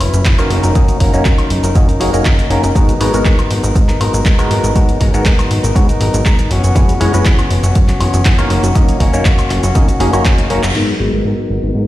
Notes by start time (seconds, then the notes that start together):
0.00 F#1 F#3 C#4 E4 B4, open hi-hat, high woodblock
0.13 F#1, closed hi-hat, shaker
0.25 F#2 F#3 C#4 E4, kick, clap, closed hi-hat, shaker
0.38 A#3 C#4 D#4 E4 F#4 A#4 B4, closed hi-hat, high woodblock, shaker
0.50 F#1 F#3 C#4 D#4 A#4, open hi-hat
0.63 F#1 C#4 D#4 A#4, closed hi-hat, shaker
0.75 F#2 F#3 A#3 C#4 D#4 F#4 A#4 D#5, kick, closed hi-hat, shaker
0.88 closed hi-hat, shaker
1.00 F#1 F#3 A#3 C#4 D#4 F#4 A#4, kick, open hi-hat
1.13 F#1 A#3 C#4 D#4 F#4 A#4, closed hi-hat, shaker
1.25 F#2 F#3 C#4 D#4 A#4, kick, clap, closed hi-hat, shaker
1.38 closed hi-hat, high woodblock, shaker
1.50 F#1, open hi-hat
1.63 F#1 C#4 D#4 A#4, closed hi-hat, shaker
1.75 F#2 A#3 C#4 D#4 F#4 D#5, kick, closed hi-hat, shaker
1.88 C#4 D#4 A#4, closed hi-hat, shaker
2.00 F#1 F#3 A#3 C#4 D#4 F#4 G#4 A#4, open hi-hat
2.13 F#1 A#3 C#4 D#4 F#4 A#4, closed hi-hat, shaker
2.25 F#2 F#3 C#4 D#4 A#4, kick, clap, closed hi-hat, shaker
2.38 C#4 D#4 A#4, closed hi-hat, shaker
2.50 F#1 F#3 A#3 C#4 D#4 F#4 A#4, open hi-hat
2.63 F#1 C#4 D#4 A#4, closed hi-hat, shaker
2.75 G#2 F#3 G#3 B3 D#4 F#4 A#4, kick, closed hi-hat, shaker
2.89 closed hi-hat, shaker
3.00 G#1 F#3 G#3 B3 D#4 F#4 A#4 B4, open hi-hat
3.13 G#1 G#3 B3 D#4 F#4 A#4, closed hi-hat, shaker
3.25 G#2 F#3 B3 D#4 A#4, kick, clap, closed hi-hat, shaker
3.39 closed hi-hat, high woodblock, shaker
3.50 G#1, open hi-hat
3.63 G#1 B3 D#4 A#4, closed hi-hat, shaker
3.75 G#2, kick, closed hi-hat, shaker
3.88 B3 D#4 A#4, clap, closed hi-hat, shaker
4.00 G#1 F#3 B3 D#4 A#4, open hi-hat, high woodblock
4.14 G#1, closed hi-hat, shaker
4.25 G#2 F#3 B3 A#4, kick, clap, closed hi-hat, shaker
4.38 G#3 B3 D#4 F#4 A#4, closed hi-hat, high woodblock, shaker
4.50 G#1 F#3 B3 D#4 A#4, open hi-hat
4.63 G#1 B3 D#4 A#4, closed hi-hat, shaker
4.75 G#2 F#3 G#3 B3 D#4 F#4 A#4 C#5, kick, closed hi-hat, shaker
4.89 closed hi-hat, shaker
5.00 G#1 F#3 G#3 B3 D#4 F#4 A#4, kick, open hi-hat
5.14 G#1 G#3 B3 D#4 F#4 A#4, closed hi-hat, shaker
5.25 G#2 F#3 B3 D#4 A#4, kick, clap, closed hi-hat, shaker
5.39 closed hi-hat, high woodblock, shaker
5.51 G#1, open hi-hat
5.63 G#1 B3 D#4 A#4, closed hi-hat, shaker
5.75 G#2 G#3 B3 D#4 F#4 C#5, kick, closed hi-hat, shaker
5.88 B3 D#4 A#4, closed hi-hat, shaker
6.00 G#1 F#3 B3 D#4 A#4, open hi-hat
6.14 G#1, closed hi-hat, shaker
6.25 G#2 F#3 B3 D#4 A#4, kick, clap, closed hi-hat, shaker
6.38 B3 D#4 A#4, closed hi-hat, shaker
6.50 F#1 E3 B3 C#4 F#4, open hi-hat
6.63 F#1 B3 C#4 F#4, closed hi-hat, shaker
6.75 F#2 E3 G#3 C#4 E4 F#4 B4, kick, closed hi-hat, shaker
6.89 closed hi-hat, shaker
7.00 F#1 E3 G#3 B3 C#4 E4 F#4 C#5, open hi-hat
7.13 F#1 G#3 C#4 E4 F#4 B4, closed hi-hat, shaker
7.25 F#2 E3 B3 C#4 F#4, kick, clap, closed hi-hat, shaker
7.39 closed hi-hat, high woodblock, shaker
7.50 F#1, open hi-hat
7.63 F#1 B3 C#4 F#4, closed hi-hat, shaker
7.75 F#2, kick, closed hi-hat, shaker
7.88 B3 C#4 F#4, clap, closed hi-hat, shaker
8.00 F#1 E3 B3 C#4 F#4, open hi-hat, high woodblock
8.14 F#1, closed hi-hat, shaker
8.25 F#2 E3 C#4 F#4, kick, clap, closed hi-hat, shaker
8.38 A#3 B3 C#4 D#4 F#4 A#4, closed hi-hat, high woodblock, shaker
8.50 F#1 A#3 C#4 F#4, open hi-hat
8.63 F#1 C#4 F#4, closed hi-hat, shaker
8.75 F#2 A#3 C#4 D#4 F#4 D#5, kick, closed hi-hat, shaker
8.89 closed hi-hat, shaker
9.00 F#1 A#3 C#4 D#4 F#4 A#4, kick, open hi-hat
9.13 F#1 A#3 C#4 D#4 F#4 A#4, closed hi-hat, shaker
9.25 F#2 A#3 C#4 F#4, kick, clap, closed hi-hat, shaker
9.39 closed hi-hat, high woodblock, shaker
9.50 F#1, clap, open hi-hat
9.63 F#1 C#4 F#4, closed hi-hat, shaker
9.75 F#2 A#3 C#4 D#4 F#4 D#5, kick, closed hi-hat, shaker
9.88 C#4 F#4, closed hi-hat, shaker
10.00 F#1 A#3 C#4 D#4 F#4 G#4, open hi-hat
10.13 F#1 A#3 C#4 D#4 F#4 A#4, closed hi-hat, high woodblock, shaker
10.25 F#2 A#3 C#4 F#4, kick, clap, closed hi-hat, shaker
10.38 C#4 F#4, closed hi-hat, shaker
10.50 F#1 A#3 C#4 D#4 F#4 A#4, open hi-hat
10.63 F#1 C#4 F#4, clap, closed hi-hat, shaker
10.75 G#2 F#3 G#3 B3 D#4 F#4 A#4 F#5, crash
11.00 G#1 G#3 B3 D#4 F#4 B4
11.13 G#1 G#3 B3 D#4 F#4 A#4
11.25 G#2 F#3 B3 D#4 A#4
11.50 G#1
11.63 G#1
11.74 G#2 F#3 B3 D#4
11.79 A#4